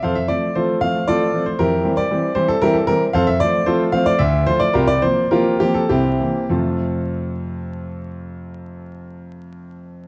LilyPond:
<<
  \new Staff \with { instrumentName = "Grand piano" } { \time 3/4 \key f \major \tempo 4 = 108 <a' c'' f''>16 e''16 d''8 <f' a' c''>8 f''8 <f' a' d''>8. c''16 | <e' g' bes'>8. d''8. c''16 a'16 <e' g' bes'>16 a'16 bes'8 | <a' c'' f''>16 e''16 d''8 <f' a' c''>8 f''16 d''16 e''8 c''16 d''16 | <f' g' bes'>16 d''16 c''8 <f' g' bes'>8 g'16 a'16 <c' e' g'>4 |
<f, c a c' f' a'>2.~ | <f, c a c' f' a'>2. | }
  \new Staff \with { instrumentName = "Grand piano" } { \time 3/4 \key f \major f,8 <f a c'>8 <f a c'>8 <f a c'>8 <f a c'>8 <f a c'>8 | f,8 <e g c'>8 <e g c'>8 <e g c'>8 <e g c'>8 <e g c'>8 | f,8 <f a c'>8 <f a c'>8 <f a c'>8 d,8 <f a f'>8 | c,8 <f bes c'>8 <f bes c'>8 <f bes c'>8 c,8 <e bes c'>8 |
r2. | r2. | }
>>